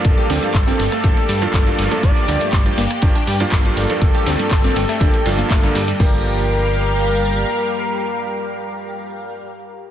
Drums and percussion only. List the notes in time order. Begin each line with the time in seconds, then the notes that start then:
0.04 kick, closed hi-hat, ride, shaker
0.18 shaker
0.30 open hi-hat, ride
0.43 closed hi-hat, shaker
0.54 kick, snare, clap, closed hi-hat, ride, shaker
0.67 closed hi-hat, shaker
0.79 open hi-hat, ride
0.92 cross-stick, snare, closed hi-hat, shaker
1.04 kick, closed hi-hat, ride, shaker
1.17 closed hi-hat, shaker
1.29 open hi-hat, ride
1.42 closed hi-hat, shaker
1.53 kick, snare, clap, closed hi-hat, ride, shaker
1.67 closed hi-hat, shaker
1.78 snare, open hi-hat, ride
1.91 snare, closed hi-hat, shaker
2.03 kick, closed hi-hat, ride, shaker
2.16 shaker
2.28 open hi-hat, ride
2.41 closed hi-hat, shaker
2.53 kick, snare, clap, closed hi-hat, ride, shaker
2.66 closed hi-hat, shaker
2.78 open hi-hat, ride
2.91 cross-stick, closed hi-hat, shaker
3.02 kick, closed hi-hat, ride, shaker
3.15 closed hi-hat, shaker
3.27 open hi-hat
3.40 closed hi-hat, shaker
3.51 kick, snare, clap, closed hi-hat, ride, shaker
3.65 closed hi-hat, ride, shaker
3.77 open hi-hat, ride
3.90 snare, closed hi-hat, shaker
4.01 kick, closed hi-hat, ride, shaker
4.15 closed hi-hat, shaker
4.26 snare, open hi-hat, ride
4.39 closed hi-hat, shaker
4.51 kick, snare, clap, closed hi-hat, ride, shaker
4.64 closed hi-hat, shaker
4.76 open hi-hat, ride
4.89 cross-stick, snare, closed hi-hat, shaker
5.01 kick, closed hi-hat, ride, shaker
5.14 closed hi-hat, shaker
5.26 open hi-hat, ride
5.39 closed hi-hat, shaker
5.50 kick, snare, clap, closed hi-hat, ride, shaker
5.63 closed hi-hat, shaker
5.75 snare, open hi-hat, ride
5.88 snare, closed hi-hat, shaker
6.00 kick, crash